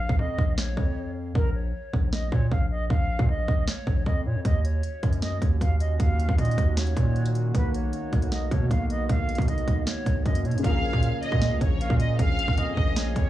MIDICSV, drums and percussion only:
0, 0, Header, 1, 2, 480
1, 0, Start_track
1, 0, Tempo, 387097
1, 1676, Time_signature, 4, 2, 24, 8
1, 16488, End_track
2, 0, Start_track
2, 0, Title_t, "Drums"
2, 116, Note_on_c, 9, 36, 97
2, 240, Note_off_c, 9, 36, 0
2, 478, Note_on_c, 9, 36, 87
2, 602, Note_off_c, 9, 36, 0
2, 717, Note_on_c, 9, 38, 112
2, 841, Note_off_c, 9, 38, 0
2, 957, Note_on_c, 9, 36, 103
2, 1081, Note_off_c, 9, 36, 0
2, 1677, Note_on_c, 9, 36, 113
2, 1801, Note_off_c, 9, 36, 0
2, 2399, Note_on_c, 9, 36, 89
2, 2523, Note_off_c, 9, 36, 0
2, 2637, Note_on_c, 9, 38, 113
2, 2761, Note_off_c, 9, 38, 0
2, 2878, Note_on_c, 9, 36, 98
2, 3002, Note_off_c, 9, 36, 0
2, 3118, Note_on_c, 9, 36, 93
2, 3242, Note_off_c, 9, 36, 0
2, 3598, Note_on_c, 9, 36, 111
2, 3722, Note_off_c, 9, 36, 0
2, 3957, Note_on_c, 9, 36, 97
2, 4081, Note_off_c, 9, 36, 0
2, 4319, Note_on_c, 9, 36, 90
2, 4443, Note_off_c, 9, 36, 0
2, 4558, Note_on_c, 9, 38, 115
2, 4682, Note_off_c, 9, 38, 0
2, 4798, Note_on_c, 9, 36, 99
2, 4922, Note_off_c, 9, 36, 0
2, 5038, Note_on_c, 9, 36, 93
2, 5162, Note_off_c, 9, 36, 0
2, 5518, Note_on_c, 9, 36, 109
2, 5518, Note_on_c, 9, 42, 88
2, 5642, Note_off_c, 9, 36, 0
2, 5642, Note_off_c, 9, 42, 0
2, 5763, Note_on_c, 9, 42, 74
2, 5887, Note_off_c, 9, 42, 0
2, 5994, Note_on_c, 9, 42, 74
2, 6118, Note_off_c, 9, 42, 0
2, 6237, Note_on_c, 9, 42, 55
2, 6238, Note_on_c, 9, 36, 93
2, 6357, Note_off_c, 9, 42, 0
2, 6357, Note_on_c, 9, 42, 53
2, 6362, Note_off_c, 9, 36, 0
2, 6475, Note_off_c, 9, 42, 0
2, 6475, Note_on_c, 9, 42, 63
2, 6477, Note_on_c, 9, 38, 111
2, 6599, Note_off_c, 9, 42, 0
2, 6601, Note_off_c, 9, 38, 0
2, 6717, Note_on_c, 9, 36, 102
2, 6720, Note_on_c, 9, 42, 75
2, 6841, Note_off_c, 9, 36, 0
2, 6844, Note_off_c, 9, 42, 0
2, 6958, Note_on_c, 9, 36, 91
2, 6963, Note_on_c, 9, 42, 83
2, 7082, Note_off_c, 9, 36, 0
2, 7087, Note_off_c, 9, 42, 0
2, 7197, Note_on_c, 9, 42, 83
2, 7321, Note_off_c, 9, 42, 0
2, 7437, Note_on_c, 9, 36, 112
2, 7438, Note_on_c, 9, 42, 86
2, 7561, Note_off_c, 9, 36, 0
2, 7562, Note_off_c, 9, 42, 0
2, 7683, Note_on_c, 9, 42, 75
2, 7796, Note_on_c, 9, 36, 95
2, 7807, Note_off_c, 9, 42, 0
2, 7917, Note_on_c, 9, 42, 65
2, 7920, Note_off_c, 9, 36, 0
2, 7997, Note_off_c, 9, 42, 0
2, 7997, Note_on_c, 9, 42, 65
2, 8077, Note_off_c, 9, 42, 0
2, 8077, Note_on_c, 9, 42, 62
2, 8158, Note_on_c, 9, 36, 94
2, 8159, Note_off_c, 9, 42, 0
2, 8159, Note_on_c, 9, 42, 70
2, 8282, Note_off_c, 9, 36, 0
2, 8283, Note_off_c, 9, 42, 0
2, 8396, Note_on_c, 9, 38, 113
2, 8397, Note_on_c, 9, 42, 56
2, 8517, Note_off_c, 9, 42, 0
2, 8517, Note_on_c, 9, 42, 57
2, 8520, Note_off_c, 9, 38, 0
2, 8637, Note_on_c, 9, 36, 101
2, 8640, Note_off_c, 9, 42, 0
2, 8640, Note_on_c, 9, 42, 74
2, 8761, Note_off_c, 9, 36, 0
2, 8764, Note_off_c, 9, 42, 0
2, 8877, Note_on_c, 9, 42, 51
2, 8997, Note_off_c, 9, 42, 0
2, 8997, Note_on_c, 9, 42, 82
2, 9117, Note_off_c, 9, 42, 0
2, 9117, Note_on_c, 9, 42, 74
2, 9241, Note_off_c, 9, 42, 0
2, 9357, Note_on_c, 9, 36, 106
2, 9358, Note_on_c, 9, 42, 92
2, 9481, Note_off_c, 9, 36, 0
2, 9482, Note_off_c, 9, 42, 0
2, 9603, Note_on_c, 9, 42, 76
2, 9727, Note_off_c, 9, 42, 0
2, 9833, Note_on_c, 9, 42, 75
2, 9957, Note_off_c, 9, 42, 0
2, 10077, Note_on_c, 9, 42, 55
2, 10078, Note_on_c, 9, 36, 92
2, 10197, Note_off_c, 9, 42, 0
2, 10197, Note_on_c, 9, 42, 54
2, 10202, Note_off_c, 9, 36, 0
2, 10314, Note_off_c, 9, 42, 0
2, 10314, Note_on_c, 9, 42, 65
2, 10316, Note_on_c, 9, 38, 111
2, 10438, Note_off_c, 9, 42, 0
2, 10440, Note_off_c, 9, 38, 0
2, 10557, Note_on_c, 9, 36, 97
2, 10559, Note_on_c, 9, 42, 75
2, 10681, Note_off_c, 9, 36, 0
2, 10683, Note_off_c, 9, 42, 0
2, 10797, Note_on_c, 9, 36, 89
2, 10802, Note_on_c, 9, 42, 80
2, 10921, Note_off_c, 9, 36, 0
2, 10926, Note_off_c, 9, 42, 0
2, 11037, Note_on_c, 9, 42, 81
2, 11161, Note_off_c, 9, 42, 0
2, 11277, Note_on_c, 9, 36, 112
2, 11277, Note_on_c, 9, 42, 90
2, 11401, Note_off_c, 9, 36, 0
2, 11401, Note_off_c, 9, 42, 0
2, 11517, Note_on_c, 9, 42, 65
2, 11596, Note_off_c, 9, 42, 0
2, 11596, Note_on_c, 9, 42, 65
2, 11636, Note_on_c, 9, 36, 99
2, 11677, Note_off_c, 9, 42, 0
2, 11677, Note_on_c, 9, 42, 60
2, 11756, Note_off_c, 9, 42, 0
2, 11756, Note_on_c, 9, 42, 75
2, 11760, Note_off_c, 9, 36, 0
2, 11876, Note_off_c, 9, 42, 0
2, 11876, Note_on_c, 9, 42, 43
2, 11998, Note_on_c, 9, 36, 88
2, 11999, Note_off_c, 9, 42, 0
2, 11999, Note_on_c, 9, 42, 70
2, 12122, Note_off_c, 9, 36, 0
2, 12123, Note_off_c, 9, 42, 0
2, 12235, Note_on_c, 9, 42, 63
2, 12237, Note_on_c, 9, 38, 113
2, 12359, Note_off_c, 9, 42, 0
2, 12361, Note_off_c, 9, 38, 0
2, 12477, Note_on_c, 9, 36, 100
2, 12480, Note_on_c, 9, 42, 76
2, 12601, Note_off_c, 9, 36, 0
2, 12604, Note_off_c, 9, 42, 0
2, 12717, Note_on_c, 9, 42, 51
2, 12718, Note_on_c, 9, 36, 92
2, 12836, Note_off_c, 9, 42, 0
2, 12836, Note_on_c, 9, 42, 86
2, 12842, Note_off_c, 9, 36, 0
2, 12957, Note_off_c, 9, 42, 0
2, 12957, Note_on_c, 9, 42, 47
2, 13037, Note_off_c, 9, 42, 0
2, 13037, Note_on_c, 9, 42, 61
2, 13117, Note_off_c, 9, 42, 0
2, 13117, Note_on_c, 9, 42, 77
2, 13197, Note_on_c, 9, 36, 111
2, 13198, Note_off_c, 9, 42, 0
2, 13198, Note_on_c, 9, 42, 96
2, 13321, Note_off_c, 9, 36, 0
2, 13322, Note_off_c, 9, 42, 0
2, 13556, Note_on_c, 9, 36, 99
2, 13674, Note_on_c, 9, 42, 84
2, 13680, Note_off_c, 9, 36, 0
2, 13798, Note_off_c, 9, 42, 0
2, 13920, Note_on_c, 9, 42, 65
2, 14036, Note_on_c, 9, 36, 90
2, 14044, Note_off_c, 9, 42, 0
2, 14154, Note_on_c, 9, 42, 71
2, 14156, Note_on_c, 9, 38, 110
2, 14160, Note_off_c, 9, 36, 0
2, 14278, Note_off_c, 9, 42, 0
2, 14280, Note_off_c, 9, 38, 0
2, 14397, Note_on_c, 9, 36, 101
2, 14399, Note_on_c, 9, 42, 73
2, 14521, Note_off_c, 9, 36, 0
2, 14523, Note_off_c, 9, 42, 0
2, 14643, Note_on_c, 9, 42, 86
2, 14757, Note_on_c, 9, 36, 101
2, 14767, Note_off_c, 9, 42, 0
2, 14877, Note_on_c, 9, 42, 84
2, 14881, Note_off_c, 9, 36, 0
2, 15001, Note_off_c, 9, 42, 0
2, 15117, Note_on_c, 9, 36, 115
2, 15117, Note_on_c, 9, 42, 93
2, 15241, Note_off_c, 9, 36, 0
2, 15241, Note_off_c, 9, 42, 0
2, 15363, Note_on_c, 9, 42, 78
2, 15476, Note_on_c, 9, 36, 99
2, 15487, Note_off_c, 9, 42, 0
2, 15593, Note_on_c, 9, 42, 82
2, 15600, Note_off_c, 9, 36, 0
2, 15717, Note_off_c, 9, 42, 0
2, 15838, Note_on_c, 9, 36, 94
2, 15962, Note_off_c, 9, 36, 0
2, 16075, Note_on_c, 9, 42, 71
2, 16076, Note_on_c, 9, 38, 113
2, 16199, Note_off_c, 9, 42, 0
2, 16200, Note_off_c, 9, 38, 0
2, 16318, Note_on_c, 9, 36, 104
2, 16320, Note_on_c, 9, 42, 79
2, 16442, Note_off_c, 9, 36, 0
2, 16444, Note_off_c, 9, 42, 0
2, 16488, End_track
0, 0, End_of_file